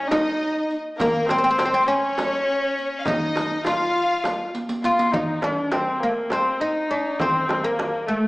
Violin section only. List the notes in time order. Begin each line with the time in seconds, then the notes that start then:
Already playing: C#5
0.10 D#5
0.97 A#4
1.27 C5
1.89 C#5
2.99 F5
3.07 D#5
3.64 F5